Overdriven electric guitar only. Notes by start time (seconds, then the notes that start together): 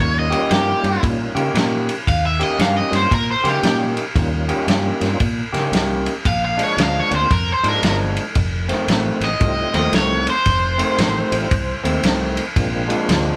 0.01 C#5
0.19 D#5
0.51 G4
2.09 F5
2.26 E5
2.43 D#5
2.61 F5
2.77 D#5
2.95 C5
3.14 A#4
3.32 C5
3.49 G4
6.27 F5
6.45 F5
6.63 C#5
6.83 F5
7.00 C#5
7.15 C5
7.33 A#4
7.52 C5
7.69 A#4
9.25 D#5
9.76 D#5
9.96 C#5
10.30 C5